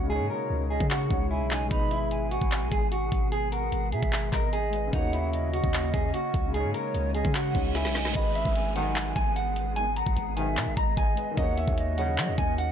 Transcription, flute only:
0.30 C#5
0.70 D#5
0.91 F#5
1.30 G#5
1.51 G#5
1.71 B5
2.11 G#5
3.52 F#5
3.93 E5
4.33 D#5
4.93 F#5
5.33 D#5
6.74 C#5
7.15 D#5
7.35 F#5
7.74 G#5
7.95 G#5
8.15 B5
8.55 G#5
9.96 F#5
10.37 E5
10.77 D#5
11.37 F#5
11.78 D#5

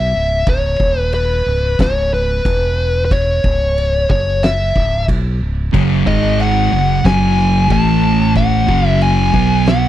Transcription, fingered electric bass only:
Already playing: B1
0.14 C#1
0.47 C#1
0.80 D#1
1.46 C#1
1.79 C#1
2.45 E1
3.44 C#1
4.10 F#1
4.76 C#1
5.08 B1
5.41 C#1
5.74 F#1
6.07 G#1
6.72 F#1
7.05 F#1
7.70 A1
8.68 F#1
9.34 B1

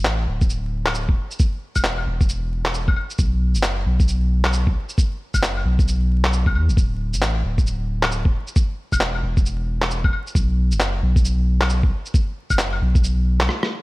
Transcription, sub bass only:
Already playing: A1
0.28 D1
1.76 E1
2.07 E1
3.19 B1
3.55 F#1
3.86 B1
5.34 F#1
5.65 B1
6.54 E2
6.68 F#1
6.77 D1
7.13 A1
7.44 D1
8.92 E1
9.23 E1
10.35 B1
10.72 F#1
11.02 B1
12.50 F#1
12.81 B1

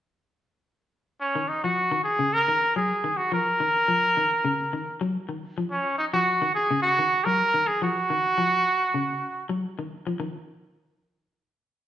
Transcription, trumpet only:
1.21 C#4
1.49 D#4
1.64 F#4
2.04 G#4
2.34 A#4
2.76 G#4
3.17 F#4
3.34 A#4
5.71 C#4
5.98 D#4
6.14 F#4
6.55 G#4
6.83 F#4
7.25 A#4
7.67 G#4
7.84 F#4

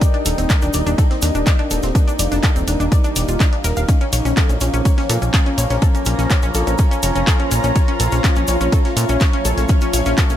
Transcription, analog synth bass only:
0.26 D#1
0.38 D#1
0.62 D#1
0.74 D#1
0.87 D#1
1.22 D#2
1.35 D#1
1.71 D#1
1.83 D#1
2.19 F1
2.32 F1
2.56 D#1
2.68 D#1
2.80 D#1
3.16 D#1
3.29 D#1
3.64 D#1
3.77 D#1
4.13 A#1
4.25 A#1
4.49 A#1
4.61 A#1
4.74 A#1
5.09 A#2
5.22 A#1
5.58 A#1
5.70 A#1
6.06 A#1
6.19 A#1
6.43 A#1
6.55 A#1
6.67 A#1
7.03 F1
7.16 F1
7.52 A#1
7.64 A#1
8.00 A#1
8.12 A#1
8.37 A#1
8.48 A#1
8.61 A#1
8.97 A#2
9.09 A#1
9.45 A#1
9.57 A#1
9.93 A#1
10.06 A#1
10.30 A#1

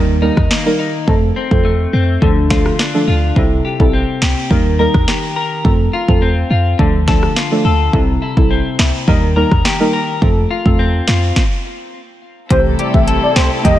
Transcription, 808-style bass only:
Already playing: D#2
0.37 D#2
1.08 F2
1.51 E2
1.93 F2
2.22 D2
3.08 D2
3.36 C2
3.80 A#1
4.22 C2
4.51 D#2
4.94 D#2
5.65 F2
6.08 E2
6.50 F2
6.79 D2
7.65 D2
7.93 C2
8.37 A#1
8.79 C2
9.08 D#2
9.52 D#2
10.22 F2
10.66 E2
11.08 F2
12.51 C2
12.94 A#1
13.36 C2
13.65 D#2

